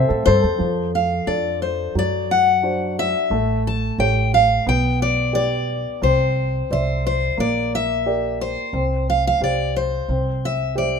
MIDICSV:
0, 0, Header, 1, 5, 480
1, 0, Start_track
1, 0, Key_signature, -1, "major"
1, 0, Tempo, 677201
1, 427, Time_signature, 4, 2, 24, 8
1, 7793, End_track
2, 0, Start_track
2, 0, Title_t, "Steel-string acoustic guitar"
2, 0, Program_c, 0, 25
2, 0, Note_on_c, 0, 76, 73
2, 0, Note_on_c, 0, 77, 66
2, 159, Note_off_c, 0, 76, 0
2, 166, Note_off_c, 0, 77, 0
2, 181, Note_on_c, 0, 72, 79
2, 636, Note_off_c, 0, 72, 0
2, 674, Note_on_c, 0, 77, 59
2, 894, Note_off_c, 0, 77, 0
2, 901, Note_on_c, 0, 74, 57
2, 1128, Note_off_c, 0, 74, 0
2, 1148, Note_on_c, 0, 72, 56
2, 1372, Note_off_c, 0, 72, 0
2, 1408, Note_on_c, 0, 74, 70
2, 1622, Note_off_c, 0, 74, 0
2, 1639, Note_on_c, 0, 78, 61
2, 2117, Note_off_c, 0, 78, 0
2, 2120, Note_on_c, 0, 76, 76
2, 2566, Note_off_c, 0, 76, 0
2, 2603, Note_on_c, 0, 81, 66
2, 2831, Note_off_c, 0, 81, 0
2, 2834, Note_on_c, 0, 79, 67
2, 3074, Note_off_c, 0, 79, 0
2, 3077, Note_on_c, 0, 77, 68
2, 3296, Note_off_c, 0, 77, 0
2, 3322, Note_on_c, 0, 79, 68
2, 3556, Note_off_c, 0, 79, 0
2, 3559, Note_on_c, 0, 74, 68
2, 3778, Note_off_c, 0, 74, 0
2, 3792, Note_on_c, 0, 74, 74
2, 4274, Note_off_c, 0, 74, 0
2, 4277, Note_on_c, 0, 72, 61
2, 4759, Note_off_c, 0, 72, 0
2, 4767, Note_on_c, 0, 72, 66
2, 4999, Note_off_c, 0, 72, 0
2, 5008, Note_on_c, 0, 72, 58
2, 5222, Note_off_c, 0, 72, 0
2, 5246, Note_on_c, 0, 74, 71
2, 5484, Note_off_c, 0, 74, 0
2, 5493, Note_on_c, 0, 76, 64
2, 5961, Note_off_c, 0, 76, 0
2, 5964, Note_on_c, 0, 72, 70
2, 6444, Note_off_c, 0, 72, 0
2, 6447, Note_on_c, 0, 77, 62
2, 6550, Note_off_c, 0, 77, 0
2, 6573, Note_on_c, 0, 77, 71
2, 6684, Note_off_c, 0, 77, 0
2, 6688, Note_on_c, 0, 74, 64
2, 6902, Note_off_c, 0, 74, 0
2, 6921, Note_on_c, 0, 72, 61
2, 7409, Note_off_c, 0, 72, 0
2, 7409, Note_on_c, 0, 76, 62
2, 7637, Note_off_c, 0, 76, 0
2, 7640, Note_on_c, 0, 74, 67
2, 7793, Note_off_c, 0, 74, 0
2, 7793, End_track
3, 0, Start_track
3, 0, Title_t, "Grand piano"
3, 0, Program_c, 1, 0
3, 0, Control_c, 1, 64, 127
3, 0, Note_on_c, 1, 53, 67
3, 0, Note_on_c, 1, 60, 50
3, 0, Note_on_c, 1, 69, 48
3, 0, Note_on_c, 1, 72, 52
3, 62, Note_off_c, 1, 69, 0
3, 62, Note_on_c, 1, 69, 53
3, 177, Note_off_c, 1, 72, 0
3, 188, Note_on_c, 1, 72, 45
3, 287, Note_off_c, 1, 69, 0
3, 298, Note_on_c, 1, 69, 46
3, 398, Note_off_c, 1, 53, 0
3, 413, Note_off_c, 1, 60, 0
3, 414, Note_on_c, 1, 53, 48
3, 419, Note_off_c, 1, 69, 0
3, 421, Note_off_c, 1, 72, 0
3, 437, Control_c, 1, 64, 0
3, 561, Control_c, 1, 64, 127
3, 901, Note_on_c, 1, 62, 31
3, 904, Note_on_c, 1, 69, 38
3, 910, Note_on_c, 1, 65, 33
3, 1353, Note_off_c, 1, 53, 0
3, 1370, Note_off_c, 1, 62, 0
3, 1372, Note_off_c, 1, 69, 0
3, 1375, Note_off_c, 1, 65, 0
3, 1383, Note_on_c, 1, 54, 46
3, 1398, Control_c, 1, 64, 0
3, 1542, Control_c, 1, 64, 127
3, 1862, Note_on_c, 1, 62, 34
3, 1866, Note_on_c, 1, 66, 29
3, 1868, Note_on_c, 1, 72, 40
3, 2318, Note_off_c, 1, 54, 0
3, 2331, Note_off_c, 1, 62, 0
3, 2333, Note_off_c, 1, 66, 0
3, 2334, Note_off_c, 1, 72, 0
3, 2346, Note_on_c, 1, 57, 51
3, 2358, Control_c, 1, 64, 0
3, 2499, Control_c, 1, 64, 127
3, 2830, Note_on_c, 1, 67, 35
3, 2833, Note_on_c, 1, 69, 30
3, 2834, Note_on_c, 1, 73, 44
3, 3279, Note_off_c, 1, 57, 0
3, 3295, Note_off_c, 1, 67, 0
3, 3297, Note_off_c, 1, 69, 0
3, 3297, Note_off_c, 1, 73, 0
3, 3306, Note_on_c, 1, 59, 52
3, 3319, Control_c, 1, 64, 0
3, 3443, Control_c, 1, 64, 127
3, 3778, Note_on_c, 1, 67, 41
3, 3781, Note_on_c, 1, 71, 34
3, 3781, Note_on_c, 1, 74, 42
3, 4239, Note_off_c, 1, 59, 0
3, 4249, Note_off_c, 1, 67, 0
3, 4250, Note_off_c, 1, 71, 0
3, 4251, Note_off_c, 1, 74, 0
3, 4266, Note_on_c, 1, 60, 52
3, 4279, Control_c, 1, 64, 0
3, 4421, Control_c, 1, 64, 127
3, 4752, Note_on_c, 1, 72, 38
3, 4756, Note_on_c, 1, 74, 31
3, 4760, Note_on_c, 1, 76, 43
3, 5198, Note_off_c, 1, 60, 0
3, 5216, Note_off_c, 1, 72, 0
3, 5218, Note_off_c, 1, 74, 0
3, 5220, Note_off_c, 1, 76, 0
3, 5226, Note_on_c, 1, 58, 51
3, 5237, Control_c, 1, 64, 0
3, 5349, Control_c, 1, 64, 127
3, 5715, Note_on_c, 1, 67, 39
3, 5717, Note_on_c, 1, 74, 37
3, 5719, Note_on_c, 1, 70, 34
3, 6159, Note_off_c, 1, 58, 0
3, 6177, Note_off_c, 1, 67, 0
3, 6178, Note_off_c, 1, 74, 0
3, 6179, Note_off_c, 1, 70, 0
3, 6192, Note_on_c, 1, 60, 51
3, 6196, Control_c, 1, 64, 0
3, 6309, Control_c, 1, 64, 127
3, 6672, Note_on_c, 1, 72, 33
3, 6673, Note_on_c, 1, 67, 36
3, 6675, Note_on_c, 1, 77, 40
3, 7122, Note_off_c, 1, 60, 0
3, 7136, Note_off_c, 1, 72, 0
3, 7137, Note_off_c, 1, 67, 0
3, 7138, Note_off_c, 1, 77, 0
3, 7153, Note_on_c, 1, 60, 44
3, 7158, Control_c, 1, 64, 0
3, 7273, Control_c, 1, 64, 127
3, 7622, Note_on_c, 1, 67, 35
3, 7626, Note_on_c, 1, 72, 31
3, 7626, Note_on_c, 1, 76, 37
3, 7793, Note_off_c, 1, 60, 0
3, 7793, Note_off_c, 1, 67, 0
3, 7793, Note_off_c, 1, 72, 0
3, 7793, Note_off_c, 1, 76, 0
3, 7793, End_track
4, 0, Start_track
4, 0, Title_t, "Harp"
4, 0, Program_c, 2, 46
4, 0, Note_on_c, 2, 60, 54
4, 0, Note_on_c, 2, 69, 57
4, 189, Note_off_c, 2, 69, 0
4, 191, Note_on_c, 2, 69, 54
4, 1117, Note_off_c, 2, 60, 0
4, 1748, Note_off_c, 2, 69, 0
4, 7793, End_track
5, 0, Start_track
5, 0, Title_t, "Upright bass"
5, 0, Program_c, 3, 32
5, 73, Note_on_c, 3, 45, 65
5, 179, Note_off_c, 3, 45, 0
5, 193, Note_on_c, 3, 43, 73
5, 298, Note_off_c, 3, 43, 0
5, 310, Note_on_c, 3, 41, 69
5, 417, Note_off_c, 3, 41, 0
5, 425, Note_on_c, 3, 41, 58
5, 841, Note_off_c, 3, 41, 0
5, 902, Note_on_c, 3, 41, 59
5, 1319, Note_off_c, 3, 41, 0
5, 1383, Note_on_c, 3, 42, 61
5, 2215, Note_off_c, 3, 42, 0
5, 2342, Note_on_c, 3, 33, 61
5, 2759, Note_off_c, 3, 33, 0
5, 2824, Note_on_c, 3, 33, 72
5, 3241, Note_off_c, 3, 33, 0
5, 3309, Note_on_c, 3, 35, 70
5, 4138, Note_off_c, 3, 35, 0
5, 4269, Note_on_c, 3, 36, 72
5, 4683, Note_off_c, 3, 36, 0
5, 4753, Note_on_c, 3, 36, 67
5, 5165, Note_off_c, 3, 36, 0
5, 5232, Note_on_c, 3, 34, 63
5, 6059, Note_off_c, 3, 34, 0
5, 6188, Note_on_c, 3, 36, 65
5, 6603, Note_off_c, 3, 36, 0
5, 6667, Note_on_c, 3, 36, 59
5, 7082, Note_off_c, 3, 36, 0
5, 7148, Note_on_c, 3, 36, 59
5, 7793, Note_off_c, 3, 36, 0
5, 7793, End_track
0, 0, End_of_file